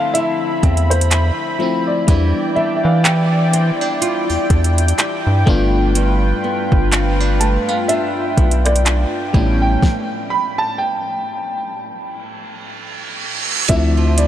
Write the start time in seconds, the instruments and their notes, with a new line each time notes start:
Already playing: nylon-string guitar D3 C4 E4, fm electric piano F3 A3 C4 E4, analog synth pad E4 E5 C6, grand piano F5
0.14 nylon-string guitar E4, grand piano E5, analog synth pad B5, closed hi-hat
0.63 analog synth bass E2, nylon-string guitar C4, kick, closed hi-hat
0.77 closed hi-hat
0.90 grand piano C5, closed hi-hat
1.01 closed hi-hat
1.11 nylon-string guitar E4, clap, closed hi-hat
1.59 fm electric piano F3 A3 C4 E4, nylon-string guitar C4
1.87 grand piano D5
2.07 analog synth bass E2, nylon-string guitar E3, fm electric piano G3 B3 D4 E4, analog synth pad E4 D5 G5, kick, closed hi-hat
2.55 analog synth bass E3, nylon-string guitar D4, grand piano E5
2.76 grand piano E5
2.83 analog synth bass E3, grand piano F5
3.04 nylon-string guitar G4, grand piano G5, clap, closed hi-hat
3.53 nylon-string guitar C4, closed hi-hat
3.81 nylon-string guitar D4
4.02 nylon-string guitar F4, closed hi-hat
4.29 analog synth bass E2, nylon-string guitar G4
4.50 analog synth bass E2, nylon-string guitar D4, kick, closed hi-hat
4.64 closed hi-hat
4.78 closed hi-hat
4.88 closed hi-hat
4.98 nylon-string guitar G4, clap, closed hi-hat
5.27 analog synth bass G2
5.46 analog synth bass G1, nylon-string guitar G2, fm electric piano A3 B3 D4 F4, analog synth pad F4 B4, kick
5.95 nylon-string guitar G2, closed hi-hat
6.44 nylon-string guitar B3
6.72 analog synth bass G1, kick
6.92 nylon-string guitar C4, clap, closed hi-hat
7.20 nylon-string guitar D4
7.40 nylon-string guitar A3, grand piano A5, closed hi-hat
7.68 nylon-string guitar B3, grand piano F5
7.88 nylon-string guitar D4, grand piano E5, closed hi-hat
8.37 analog synth bass B1, nylon-string guitar B3, kick, closed hi-hat
8.51 closed hi-hat
8.65 grand piano D5, cross-stick, closed hi-hat
8.76 closed hi-hat
8.86 nylon-string guitar D4, clap, closed hi-hat
9.33 analog synth bass A1, nylon-string guitar A2, fm electric piano G3 B3 C#4 E4, analog synth pad C#4 G5, kick
9.62 grand piano G5
9.83 kick, snare
10.30 grand piano B5
10.58 grand piano A5
10.78 grand piano G5
11.76 reverse cymbal
13.69 analog synth bass D2, nylon-string guitar D3, fm electric piano F3 A3 C4 E4, analog synth pad D4 C5 D5, grand piano E5, kick, closed hi-hat
13.97 nylon-string guitar F3
14.17 nylon-string guitar E4, grand piano D5, closed hi-hat